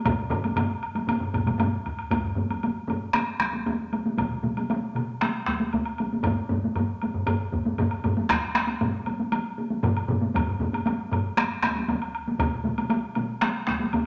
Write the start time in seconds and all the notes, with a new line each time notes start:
0.05 taiko, taiko low-mid, taiko mid, taiko high, high woodblock
0.30 taiko low-mid, taiko mid, high woodblock
0.44 taiko high, high woodblock
0.56 taiko low-mid, taiko mid, taiko high, high woodblock
0.83 high woodblock
0.96 taiko high, high woodblock
1.08 taiko low-mid, taiko mid, taiko high, high woodblock
1.21 taiko low-mid, taiko mid
1.33 taiko, taiko low-mid, taiko mid, taiko high, high woodblock
1.46 taiko low-mid, taiko mid, taiko high, high woodblock
1.58 taiko low-mid, taiko mid, taiko high, high woodblock
1.86 taiko, high woodblock
1.99 high woodblock
2.10 taiko, taiko low-mid, taiko high, high woodblock
2.23 taiko low-mid
2.35 taiko low-mid, taiko high
2.50 taiko high, high woodblock
2.63 taiko high, high woodblock
2.88 taiko low-mid, taiko high, high woodblock
3.13 taiko rim, taiko high, high woodblock
3.40 taiko rim, taiko, taiko high
3.54 taiko high
3.66 taiko, taiko high, high woodblock
3.92 taiko high, high woodblock
4.06 taiko high
4.17 taiko, taiko mid, taiko high, high woodblock
4.30 taiko mid
4.43 taiko mid, taiko high
4.57 taiko high, high woodblock
4.70 taiko high, high woodblock
4.95 taiko mid, taiko high, high woodblock
5.21 taiko rim, taiko high, high woodblock
5.46 taiko rim, taiko, taiko high
5.60 taiko high
5.73 taiko, taiko high, high woodblock
5.85 high woodblock
5.98 taiko high, high woodblock
6.13 taiko high
6.24 taiko, taiko low-mid, taiko high, high woodblock
6.49 taiko low-mid, taiko high
6.64 taiko high
6.76 taiko low-mid, taiko high, high woodblock
7.02 taiko high, high woodblock
7.14 taiko low-mid
7.27 taiko low-mid, taiko high, high woodblock
7.52 taiko, taiko low-mid, taiko high
7.65 taiko low-mid, taiko high
7.78 taiko, taiko low-mid, taiko high, high woodblock
7.91 high woodblock
8.04 taiko low-mid, taiko high, high woodblock
8.17 taiko high
8.29 taiko rim, taiko, taiko high, high woodblock
8.55 taiko rim, taiko high
8.67 taiko high, high woodblock
8.81 taiko low-mid, taiko mid, taiko high, high woodblock
9.06 taiko high, high woodblock
9.19 taiko high
9.32 taiko high, high woodblock
9.58 taiko high
9.70 taiko high
9.83 taiko low-mid, taiko mid, taiko high, high woodblock
9.97 high woodblock
10.08 taiko low-mid, taiko mid, taiko high
10.21 taiko high
10.34 taiko, taiko low-mid, taiko high, high woodblock
10.47 taiko low-mid
10.60 taiko low-mid, taiko high
10.74 taiko high, high woodblock
10.86 taiko high, high woodblock
11.11 taiko low-mid, taiko high, high woodblock
11.37 taiko rim, taiko high, high woodblock
11.62 taiko rim, taiko, taiko high
11.76 taiko high
11.88 taiko, taiko high, high woodblock
12.02 high woodblock
12.15 high woodblock
12.28 taiko high
12.39 taiko, taiko mid, taiko high, high woodblock
12.52 taiko mid
12.65 taiko mid, taiko high
12.78 taiko high, high woodblock
12.90 taiko high, high woodblock
13.15 taiko mid, taiko high, high woodblock
13.41 taiko rim, taiko high, high woodblock
13.67 taiko rim, taiko, taiko high
13.80 taiko high
13.93 taiko, taiko high, high woodblock